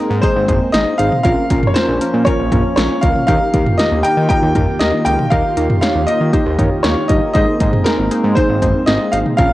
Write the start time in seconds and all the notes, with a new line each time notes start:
Already playing: G#3 A#3 C4 D#4 G#4 A#4
0.11 G#2
0.22 D#4 G#4 C5, kick, closed hi-hat
0.36 G#1
0.48 G#1 D#4 G#4 C5, kick, closed hi-hat, mid tom
0.72 G#1 D#4 G#4 C5 D#5, snare, closed hi-hat
0.98 G#1 D#4 G#4 C5 F5, closed hi-hat
1.12 mid tom
1.23 A#1 F3 C#4 F4 A#4 F5, kick, closed hi-hat
1.50 A#1 C#4 F4 A#4, kick, closed hi-hat
1.63 mid tom
1.67 C#5
1.74 C#4 F4 A#4 C5, snare, closed hi-hat
1.88 A#1
2.01 C#4 F4 A#4, closed hi-hat
2.14 A#2
2.25 C#4 F4 A#4 C#5, kick, closed hi-hat
2.39 A#1
2.52 A#1 C#4 F4 A#4, kick, closed hi-hat, mid tom
2.76 A#1 C#4 F4 A#4 C#5, snare, closed hi-hat
3.01 C#2 C#4 F4 A#4 F5, kick, closed hi-hat
3.16 mid tom
3.27 D#2 D#3 D#4 F4 G4 A#4 F5, kick, closed hi-hat
3.54 D#2 D#4 G4 A#4, kick, closed hi-hat
3.66 mid tom
3.78 D#4 G4 A#4 D#5, snare, closed hi-hat
3.92 D#2
4.03 D#4 G4 A#4 G5, closed hi-hat
4.17 D#3
4.29 D#4 G4 A#4 G5, kick, closed hi-hat
4.43 D#2
4.55 D#2 D#4 G4 A#4, kick, closed hi-hat, mid tom
4.79 D#2 D#4 G4 A#4 D#5, snare, closed hi-hat
5.05 C#2 D#4 G4 A#4 G5, closed hi-hat
5.19 mid tom
5.30 D#2 D#4 G4 A#4 F5, kick, closed hi-hat
5.57 D#2 D#4 G4 A#4, closed hi-hat
5.70 mid tom
5.81 D#4 G4 C#5 F5, snare, closed hi-hat
5.95 D#2
6.07 D#4 G4 A#4 D#5, closed hi-hat
6.21 D#3
6.33 D#4 G4 C5, kick, closed hi-hat
6.46 D#2
6.59 D#2 D#4 G4 C#5, kick, closed hi-hat, mid tom
6.83 D#2 D#4 G4 A#4 C#5, snare, closed hi-hat
7.08 G1 D#4 G4 A#4 D#5, kick, closed hi-hat
7.33 G#1 G#3 C4 D#4 G#4 C5 D#5, kick, closed hi-hat
7.60 G#1 D#4 G#4 C5, kick, closed hi-hat
7.73 mid tom
7.84 D#4 G#4 A#4 C5, snare, closed hi-hat
7.99 G#1
8.11 D#4 G#4 C5, closed hi-hat
8.24 G#2
8.35 D#4 G#4 C5, kick, closed hi-hat
8.49 G#1
8.62 G#1 D#4 G#4 C5, kick, closed hi-hat, mid tom
8.86 G#1 D#4 G#4 C5 D#5, snare, closed hi-hat
9.12 G#1 D#4 G#4 C5 F5, closed hi-hat
9.26 mid tom
9.37 A#1 F3 C#4 F4 A#4 F5, kick, closed hi-hat